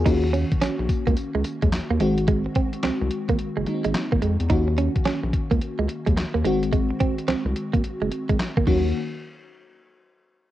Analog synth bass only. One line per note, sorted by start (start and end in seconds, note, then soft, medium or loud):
0.06 0.44 D#2 loud
0.62 0.69 A#1 soft
0.79 0.88 A#1 loud
1.07 1.15 C#2 medium
1.35 1.43 C#2 medium
1.63 1.71 D#2 medium
1.73 1.80 D#2 soft
1.90 1.99 D#2 medium
2.01 2.47 G#1 medium
2.84 2.91 C2 soft
3.02 3.10 C2 loud
3.29 3.38 G#1 medium
3.57 3.66 F#1 medium
3.85 3.93 G#1 medium
4.13 4.21 G#1 medium
4.23 4.37 F2 medium
4.40 4.49 E2 medium
4.50 4.89 D#2 loud
5.06 5.13 A#1 soft
5.24 5.32 A#1 loud
5.51 5.60 C#2 medium
5.79 5.88 C#2 medium
6.07 6.15 D#2 medium
6.17 6.24 D#2 soft
6.35 6.43 D#2 medium
6.45 6.91 G#1 medium
7.28 7.35 C2 medium
7.45 7.54 C2 loud
7.74 7.82 G#1 medium
8.02 8.10 F#1 medium
8.30 8.38 G#1 medium
8.57 8.65 G#1 medium
8.67 8.93 D#2 medium